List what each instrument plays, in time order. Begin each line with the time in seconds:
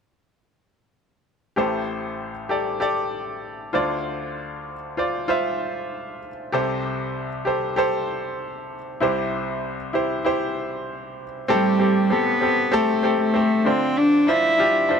1.56 grand piano A1 A2 G4 A4 C5
2.49 grand piano G4 A4 D5
2.80 grand piano G4 A4 D5
3.73 grand piano D2 D3 F4 C5 D5
4.97 grand piano F4 C5 D5
5.28 grand piano F4 C5 E5
6.52 grand piano C2 C3 G4 A4 C5
7.45 grand piano G4 A4 C5
7.76 grand piano G4 A4 C5
9.00 grand piano C2 C3 E4 G4 C5
9.93 grand piano E4 G4 C5
10.25 grand piano E4 G4 C5
11.48 grand piano A2 C4 G4 A4, cello G3
11.79 grand piano C4 G4 A4
12.10 cello B3, grand piano C4 G4 A4
12.41 grand piano C4 G4 A4
12.72 cello A3, grand piano C4 G4 A4
13.03 grand piano C4 G4 A4
13.21 cello A3
13.34 grand piano C4 G4 C5
13.65 grand piano D3 D4 F4 C5, cello C4
13.97 cello D4
14.27 grand piano D4 F4 C5, cello E4
14.58 grand piano D4 F4 G4
14.89 grand piano D4 F4 C5